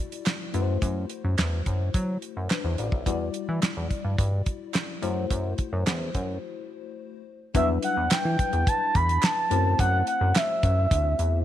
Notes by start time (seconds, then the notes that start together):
Already playing: G3 E4 F#4 D5
0.12 closed hi-hat
0.26 snare, clap, closed hi-hat
0.53 F#2 A3 E4 F#4 B4, closed hi-hat
0.62 C5
0.82 F#2, kick, closed hi-hat
1.10 closed hi-hat
1.24 F#2
1.38 E2, snare, clap, closed hi-hat
1.66 F#2, kick, closed hi-hat
1.94 F#3, kick, closed hi-hat
2.22 closed hi-hat
2.37 F#2
2.50 D4 B4, snare, clap, closed hi-hat
2.64 E2 E4 C5
2.78 A1 F#4 D5, closed hi-hat
2.92 B1 E5, kick
3.06 E2 G3 E4 F#4 D5, kick, closed hi-hat
3.34 closed hi-hat
3.49 E3
3.62 snare, clap, closed hi-hat
3.77 E2
3.90 kick, closed hi-hat
4.05 G2
4.18 G2, kick, closed hi-hat
4.46 kick, closed hi-hat
4.74 snare, clap, closed hi-hat
5.02 F#2 A3 E4 F#4 C5, closed hi-hat
5.31 F#2, kick, closed hi-hat
5.58 kick, closed hi-hat
5.73 F#2
5.86 E2, snare, clap, closed hi-hat
6.15 F#2, kick, closed hi-hat
7.54 E2 F#3 G3 D4 E4 B4 E5, kick, closed hi-hat
7.82 F#5, closed hi-hat
7.97 E2
8.11 E3 G5, snare, clap, closed hi-hat
8.25 E3
8.39 kick, closed hi-hat
8.53 E2, closed hi-hat
8.67 A5, kick, closed hi-hat
8.95 E2 B5, kick, closed hi-hat
9.09 closed hi-hat
9.22 A5, snare, clap, closed hi-hat
9.50 F#2 A3 C4 E4 F#4 C5, closed hi-hat
9.79 F#2 F#5, kick, closed hi-hat
10.07 F#5, closed hi-hat
10.21 F#2
10.35 E5, snare, clap, closed hi-hat
10.63 F#2, kick, closed hi-hat
10.91 D2, kick, closed hi-hat
11.19 E2, closed hi-hat